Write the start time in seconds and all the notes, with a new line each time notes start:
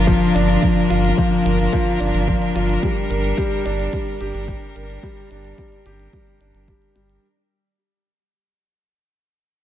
Already playing: G1 F3 D4 F4 A#4
0.07 F3, kick, closed hi-hat
0.22 closed hi-hat
0.35 G1 D4, closed hi-hat
0.50 closed hi-hat
0.62 F3, kick, closed hi-hat
0.77 closed hi-hat
0.90 G1 F4, closed hi-hat
1.05 closed hi-hat
1.18 F3, kick, closed hi-hat
1.32 closed hi-hat
1.45 G1 A#4, closed hi-hat
1.60 closed hi-hat
1.73 F3, kick, closed hi-hat
1.87 closed hi-hat
2.00 G1 D4, closed hi-hat
2.14 G1, closed hi-hat
2.28 F3, kick, closed hi-hat
2.42 closed hi-hat
2.55 G1 F4, closed hi-hat
2.69 closed hi-hat
2.83 G3, kick, closed hi-hat
2.97 closed hi-hat
3.10 G1 A#4, closed hi-hat
3.24 closed hi-hat
3.38 G3, kick, closed hi-hat
3.52 closed hi-hat
3.65 G1 D4, closed hi-hat
3.80 closed hi-hat
3.93 G3, kick, closed hi-hat
4.07 closed hi-hat
4.21 G1 G4, closed hi-hat
4.34 G1, closed hi-hat
4.48 G3, kick, closed hi-hat
4.62 closed hi-hat
4.76 G1 A#4, closed hi-hat
4.90 closed hi-hat
5.03 G3, kick, closed hi-hat
5.17 closed hi-hat
5.31 G1 D4, closed hi-hat
5.45 closed hi-hat
5.58 G3, kick, closed hi-hat
5.72 closed hi-hat
5.85 G1 G4, closed hi-hat
6.00 closed hi-hat
6.13 G3, kick, closed hi-hat
6.27 closed hi-hat
6.40 G1 D4, closed hi-hat
6.54 G1, closed hi-hat
6.68 G3, kick, closed hi-hat
6.82 closed hi-hat
6.96 G1 G3, closed hi-hat
7.10 closed hi-hat